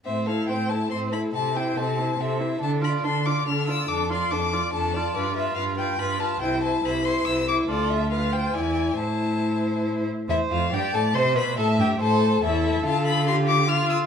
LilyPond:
<<
  \new Staff \with { instrumentName = "Violin" } { \time 3/4 \key a \minor \tempo 4 = 141 e''8 f''8 g''8 a''8 c'''8 b''8 | a''8 g''8 a''4 e''4 | a''8 b''8 c'''8 d'''8 f'''8 e'''8 | d'''8 c'''8 d'''4 a''4 |
d''8 e''8 f''8 g''8 b''8 a''8 | g''8 a''8 b''8 c'''8 e'''8 d'''8 | d''8 e''8 f''8 g''8 gis''4 | a''2 r4 |
e''8 f''8 g''8 a''8 c'''8 b''8 | a''8 g''8 a''4 e''4 | a''8 b''8 c'''8 d'''8 f'''8 e'''8 | }
  \new Staff \with { instrumentName = "Violin" } { \time 3/4 \key a \minor c''8 a'8 c''8 a'8 c''8 a'8 | a'8 c''8 a'8 c''8 a'8 c''8 | a'8 d''8 a'8 d''8 a'8 d''8 | a'8 d''8 a'8 d''8 a'8 d''8 |
b'8 b'8 b'8 b'8 b'8 b'8 | c''8 c''8 c''8 c''8 c''8 c''8 | a'4 b'8 c''8 d''4 | c''2~ c''8 r8 |
e'8 f'8 g'8 a'8 c''8 b'8 | a'8 g'8 a'4 e'4 | f'2 f'4 | }
  \new Staff \with { instrumentName = "Viola" } { \time 3/4 \key a \minor c'8 e'8 c'8 e'8 c'8 e'8 | c'8 e'8 c'8 e'8 c'8 e'8 | d'8 f'8 d'8 f'8 d'8 f'8 | d'8 f'8 d'8 f'8 d'8 f'8 |
f'8 f'8 f'8 f'8 f'8 f'8 | e'8 e'8 e'8 e'8 e'8 e'8 | f'4 f'4 e'4 | e'2~ e'8 r8 |
c''4 d''4 c''4 | e''4 c''4 a'4~ | a'4 g'4 f'4 | }
  \new Staff \with { instrumentName = "Cello" } { \clef bass \time 3/4 \key a \minor a,4 a,4 a,4 | c4 c4 c4 | d4 d4 d4 | f,4 f,4 f,4 |
g,4 g,4 g,4 | c,4 c,4 c,4 | d,2 e,4 | a,2~ a,8 r8 |
e,8 f,8 g,8 a,8 c8 b,8 | a,8 g,8 a,4 e,4 | d2. | }
>>